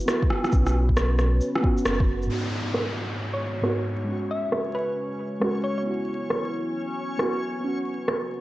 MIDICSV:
0, 0, Header, 1, 8, 480
1, 0, Start_track
1, 0, Tempo, 444444
1, 566, Time_signature, 4, 2, 24, 8
1, 9078, End_track
2, 0, Start_track
2, 0, Title_t, "Synth pluck"
2, 0, Program_c, 0, 84
2, 3601, Note_on_c, 0, 73, 84
2, 3927, Note_off_c, 0, 73, 0
2, 4653, Note_on_c, 0, 76, 84
2, 4905, Note_off_c, 0, 76, 0
2, 5127, Note_on_c, 0, 71, 88
2, 5382, Note_off_c, 0, 71, 0
2, 6088, Note_on_c, 0, 73, 84
2, 6186, Note_off_c, 0, 73, 0
2, 6241, Note_on_c, 0, 73, 73
2, 6295, Note_off_c, 0, 73, 0
2, 9078, End_track
3, 0, Start_track
3, 0, Title_t, "Synth texture"
3, 0, Program_c, 1, 99
3, 2483, Note_on_c, 1, 73, 79
3, 2488, Note_on_c, 1, 61, 80
3, 9078, Note_off_c, 1, 61, 0
3, 9078, Note_off_c, 1, 73, 0
3, 9078, End_track
4, 0, Start_track
4, 0, Title_t, "Analog synth pad"
4, 0, Program_c, 2, 89
4, 0, Note_on_c, 2, 64, 78
4, 0, Note_on_c, 2, 66, 82
4, 0, Note_on_c, 2, 71, 86
4, 565, Note_on_c, 2, 61, 74
4, 1348, Note_off_c, 2, 64, 0
4, 2487, Note_on_c, 2, 56, 86
4, 2876, Note_on_c, 2, 68, 74
4, 2886, Note_on_c, 2, 63, 74
4, 3267, Note_off_c, 2, 61, 0
4, 3267, Note_off_c, 2, 66, 0
4, 4402, Note_on_c, 2, 61, 84
4, 4406, Note_off_c, 2, 56, 0
4, 4837, Note_on_c, 2, 66, 74
4, 5183, Note_off_c, 2, 71, 0
4, 5187, Note_off_c, 2, 63, 0
4, 6321, Note_on_c, 2, 64, 91
4, 7106, Note_off_c, 2, 61, 0
4, 7107, Note_off_c, 2, 68, 0
4, 7223, Note_on_c, 2, 71, 71
4, 8247, Note_on_c, 2, 61, 89
4, 8989, Note_off_c, 2, 64, 0
4, 9078, Note_off_c, 2, 61, 0
4, 9078, Note_off_c, 2, 66, 0
4, 9078, Note_off_c, 2, 71, 0
4, 9078, End_track
5, 0, Start_track
5, 0, Title_t, "Synth keys"
5, 0, Program_c, 3, 88
5, 0, Control_c, 3, 64, 127
5, 0, Note_on_c, 3, 59, 73
5, 0, Note_on_c, 3, 64, 66
5, 0, Note_on_c, 3, 66, 81
5, 61, Note_off_c, 3, 59, 0
5, 61, Note_on_c, 3, 59, 78
5, 85, Note_off_c, 3, 64, 0
5, 85, Note_on_c, 3, 64, 72
5, 105, Note_off_c, 3, 66, 0
5, 105, Note_on_c, 3, 66, 88
5, 511, Note_off_c, 3, 59, 0
5, 524, Note_on_c, 3, 59, 73
5, 545, Note_off_c, 3, 64, 0
5, 555, Note_off_c, 3, 66, 0
5, 566, Note_on_c, 3, 61, 68
5, 580, Control_c, 3, 64, 0
5, 612, Note_on_c, 3, 66, 81
5, 769, Control_c, 3, 64, 127
5, 1728, Note_off_c, 3, 59, 0
5, 1742, Note_on_c, 3, 59, 90
5, 1749, Note_off_c, 3, 61, 0
5, 1767, Note_on_c, 3, 61, 81
5, 1772, Note_off_c, 3, 66, 0
5, 1786, Note_on_c, 3, 66, 100
5, 1875, Note_off_c, 3, 59, 0
5, 1887, Note_off_c, 3, 61, 0
5, 1897, Note_off_c, 3, 66, 0
5, 2441, Note_on_c, 3, 44, 66
5, 2474, Note_on_c, 3, 59, 58
5, 2500, Note_on_c, 3, 63, 59
5, 2502, Control_c, 3, 64, 0
5, 2527, Note_on_c, 3, 66, 72
5, 2702, Control_c, 3, 64, 127
5, 3883, Note_off_c, 3, 44, 0
5, 3899, Note_off_c, 3, 59, 0
5, 3903, Note_on_c, 3, 44, 72
5, 3913, Note_off_c, 3, 63, 0
5, 3918, Note_on_c, 3, 59, 64
5, 3926, Note_off_c, 3, 66, 0
5, 3930, Note_on_c, 3, 63, 62
5, 3947, Note_on_c, 3, 66, 75
5, 4365, Note_on_c, 3, 56, 63
5, 4374, Note_off_c, 3, 44, 0
5, 4382, Note_off_c, 3, 59, 0
5, 4387, Note_off_c, 3, 63, 0
5, 4396, Note_off_c, 3, 66, 0
5, 4408, Note_on_c, 3, 61, 57
5, 4420, Control_c, 3, 64, 0
5, 4452, Note_on_c, 3, 66, 72
5, 4629, Control_c, 3, 64, 127
5, 5805, Note_off_c, 3, 56, 0
5, 5827, Note_off_c, 3, 61, 0
5, 5830, Note_on_c, 3, 56, 68
5, 5848, Note_off_c, 3, 66, 0
5, 5854, Note_on_c, 3, 61, 66
5, 5874, Note_on_c, 3, 66, 78
5, 6289, Note_on_c, 3, 59, 64
5, 6298, Note_off_c, 3, 56, 0
5, 6309, Note_off_c, 3, 61, 0
5, 6319, Note_off_c, 3, 66, 0
5, 6330, Note_on_c, 3, 64, 60
5, 6340, Control_c, 3, 64, 0
5, 6373, Note_on_c, 3, 66, 72
5, 6522, Control_c, 3, 64, 127
5, 7727, Note_off_c, 3, 59, 0
5, 7747, Note_off_c, 3, 64, 0
5, 7749, Note_on_c, 3, 59, 72
5, 7769, Note_off_c, 3, 66, 0
5, 7772, Note_on_c, 3, 64, 64
5, 7794, Note_on_c, 3, 66, 81
5, 8195, Note_off_c, 3, 59, 0
5, 8208, Note_on_c, 3, 59, 66
5, 8229, Note_off_c, 3, 64, 0
5, 8239, Note_off_c, 3, 66, 0
5, 8251, Note_on_c, 3, 61, 62
5, 8258, Control_c, 3, 64, 0
5, 8294, Note_on_c, 3, 66, 71
5, 8446, Control_c, 3, 64, 127
5, 9078, Note_off_c, 3, 59, 0
5, 9078, Note_off_c, 3, 61, 0
5, 9078, Note_off_c, 3, 66, 0
5, 9078, End_track
6, 0, Start_track
6, 0, Title_t, "Sub bass"
6, 0, Program_c, 4, 38
6, 567, Note_on_c, 4, 35, 96
6, 1515, Note_off_c, 4, 35, 0
6, 1997, Note_on_c, 4, 30, 80
6, 2471, Note_off_c, 4, 30, 0
6, 9078, End_track
7, 0, Start_track
7, 0, Title_t, "Downlifter"
7, 0, Program_c, 5, 103
7, 2479, Note_on_c, 5, 60, 65
7, 6323, Note_off_c, 5, 60, 0
7, 9078, End_track
8, 0, Start_track
8, 0, Title_t, "Drums"
8, 86, Note_on_c, 9, 37, 96
8, 86, Note_on_c, 9, 82, 52
8, 194, Note_off_c, 9, 37, 0
8, 194, Note_off_c, 9, 82, 0
8, 242, Note_on_c, 9, 36, 96
8, 327, Note_on_c, 9, 37, 64
8, 350, Note_off_c, 9, 36, 0
8, 435, Note_off_c, 9, 37, 0
8, 479, Note_on_c, 9, 37, 65
8, 479, Note_on_c, 9, 82, 30
8, 565, Note_off_c, 9, 82, 0
8, 565, Note_on_c, 9, 82, 54
8, 569, Note_on_c, 9, 36, 110
8, 587, Note_off_c, 9, 37, 0
8, 673, Note_off_c, 9, 82, 0
8, 677, Note_off_c, 9, 36, 0
8, 719, Note_on_c, 9, 37, 56
8, 719, Note_on_c, 9, 82, 56
8, 827, Note_off_c, 9, 37, 0
8, 827, Note_off_c, 9, 82, 0
8, 962, Note_on_c, 9, 36, 58
8, 1045, Note_on_c, 9, 37, 93
8, 1045, Note_on_c, 9, 82, 54
8, 1070, Note_off_c, 9, 36, 0
8, 1153, Note_off_c, 9, 37, 0
8, 1153, Note_off_c, 9, 82, 0
8, 1282, Note_on_c, 9, 37, 58
8, 1282, Note_on_c, 9, 82, 31
8, 1390, Note_off_c, 9, 37, 0
8, 1390, Note_off_c, 9, 82, 0
8, 1523, Note_on_c, 9, 82, 55
8, 1631, Note_off_c, 9, 82, 0
8, 1679, Note_on_c, 9, 37, 70
8, 1768, Note_on_c, 9, 36, 101
8, 1787, Note_off_c, 9, 37, 0
8, 1876, Note_off_c, 9, 36, 0
8, 1918, Note_on_c, 9, 82, 54
8, 2003, Note_off_c, 9, 82, 0
8, 2003, Note_on_c, 9, 37, 97
8, 2003, Note_on_c, 9, 82, 53
8, 2111, Note_off_c, 9, 37, 0
8, 2111, Note_off_c, 9, 82, 0
8, 2161, Note_on_c, 9, 36, 104
8, 2269, Note_off_c, 9, 36, 0
8, 2401, Note_on_c, 9, 82, 30
8, 2509, Note_off_c, 9, 82, 0
8, 2963, Note_on_c, 9, 37, 88
8, 3071, Note_off_c, 9, 37, 0
8, 3925, Note_on_c, 9, 37, 86
8, 4033, Note_off_c, 9, 37, 0
8, 4884, Note_on_c, 9, 37, 91
8, 4992, Note_off_c, 9, 37, 0
8, 5847, Note_on_c, 9, 37, 94
8, 5955, Note_off_c, 9, 37, 0
8, 6807, Note_on_c, 9, 37, 92
8, 6915, Note_off_c, 9, 37, 0
8, 7768, Note_on_c, 9, 37, 95
8, 7876, Note_off_c, 9, 37, 0
8, 8727, Note_on_c, 9, 37, 96
8, 8835, Note_off_c, 9, 37, 0
8, 9078, End_track
0, 0, End_of_file